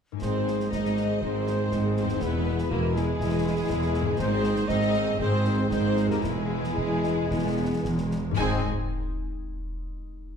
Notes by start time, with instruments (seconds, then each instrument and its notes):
0.12 harp G#2 G#3 D#4
0.17 viola section G#3, harp G#4, violin section C5
0.21 double bass section G#1, cello section G#2, trombone section D#3 G#3, french horn section C4 G#4, violin section C4, viola section D#4, flute G#4, trumpet section C5, concert bass drum, snare, crash
0.33 viola section C4 G#4
0.45 viola section G#3 D#4, snare
0.59 viola section C4 G#4, snare
0.71 double bass section G#1, cello section G#2, trombone section D#3 G#3, viola section G#3 D#4, french horn section C4 G#4, violin section D#4 D#5, flute C5, trumpet section D#5, concert bass drum, snare
0.84 viola section C4 G#4, snare
0.96 viola section G#3 D#4, snare
1.10 viola section C4 G#4
1.22 double bass section G#1, cello section G#2, trombone section D#3 G#3, viola section G#3 D#4, violin section C4 C5, french horn section C4 G#4, clarinet D#4, flute G#4, trumpet section C5, concert bass drum
1.34 viola section C4 G#4
1.46 viola section G#3 D#4, snare
1.58 viola section C4 G#4
1.72 double bass section G#1, cello section G#2, viola section G#3 D#4, concert bass drum, snare
1.85 viola section C4 G#4
1.96 viola section G#3 D#4, violin section C4 C5, flute G#4, trumpet section C5, snare
2.03 harp E2
2.08 harp G#3, viola section C4 G#4, snare
2.13 harp E4
2.17 cello section E2, violin section B3, harp G#4, flute G#4
2.21 double bass section E1, trombone section E3 G#3, viola section G#3 E4, french horn section B3 G#4, clarinet E4, violin section B4, trumpet section B4, concert bass drum, snare
2.36 viola section B3 G#4
2.47 viola section G#3 E4
2.59 viola section B3 G#4, snare
2.70 double bass section E1, cello section E2, viola section G#3 E4, violin section A#3 A#4, flute F#4, trumpet section A#4, concert bass drum
2.84 viola section B3 G#4
2.95 violin section G#3 G#4, viola section G#3 E4, flute E4, trumpet section G#4, snare
3.09 viola section B3 G#4
3.20 double bass section E1, cello section E2, viola section G#3 E4, clarinet E4, concert bass drum, snare
3.33 viola section B3 G#4
3.44 viola section G#3 E4
3.57 viola section B3 G#4
3.69 double bass section E1, cello section E2, viola section G#3 E4, concert bass drum, snare
3.82 viola section B3 G#4, snare
3.93 viola section G#3 E4, snare
4.01 harp G#2, viola section B3 G#4
4.05 harp G#3
4.10 harp D#4
4.14 trombone section D#3 G#3, viola section G#3 D#4, violin section C4, harp G#4
4.19 double bass section G#1, cello section G#2, french horn section C4 G#4, clarinet D#4, flute G#4, violin section C5, trumpet section C5, concert bass drum, snare
4.30 viola section C4 G#4
4.41 viola section G#3 D#4, snare
4.55 viola section C4 G#4, snare
4.67 double bass section G#1, cello section G#2, trombone section D#3 G#3, viola section G#3 D#4, french horn section C4 G#4, clarinet C4, violin section D#4 D#5, flute C5, trumpet section D#5, concert bass drum, snare
4.80 viola section C4 G#4, snare
4.94 viola section G#3 D#4, snare
5.07 viola section C4 G#4
5.18 double bass section G#1, cello section G#2, trombone section D#3 G#3, viola section G#3 D#4, violin section C4 C5, clarinet C4, french horn section C4 G#4, flute G#4, trumpet section C5, concert bass drum
5.31 viola section C4 G#4
5.45 viola section G#3 D#4, snare
5.57 viola section C4 G#4
5.69 double bass section G#1, cello section G#2, trombone section D#3 G#3, viola section G#3 D#4, violin section C4 C5, french horn section C4 G#4, clarinet D#4, flute G#4, trumpet section C5, concert bass drum, snare
5.81 viola section C4 G#4
5.95 viola section G#3 D#4, snare
6.06 harp E2, viola section C4 G#4, flute G4, trumpet section A#4
6.10 harp G#3, violin section A#3 A#4, snare
6.15 harp E4
6.19 double bass section E1, trombone section E3 G#3, viola section G#3 E4, french horn section B3, flute E4, clarinet E4, harp G#4
6.23 cello section E2, violin section G#3 G#4, trumpet section G#4, french horn section G#4, concert bass drum, snare
6.33 viola section B3 G#4
6.49 viola section G#3 E4
6.63 viola section B3 G#4, snare
6.76 double bass section E1, cello section E2, viola section G#3, concert bass drum
7.04 snare
7.30 double bass section E1, cello section E2, viola section B3, concert bass drum, snare
7.83 double bass section E1, cello section E2, viola section G#3, concert bass drum, snare
7.98 snare
8.11 snare
8.31 harp G#2 G#3
8.37 double bass section G#1, cello section G#2, trombone section D#3 G#3, harp C4 D#4, viola section C4 D#4, clarinet C4, french horn section C4 G#4, trumpet section C4, violin section G#4 G#5, flute G#5, concert bass drum, snare, crash
8.43 harp G#4 D#5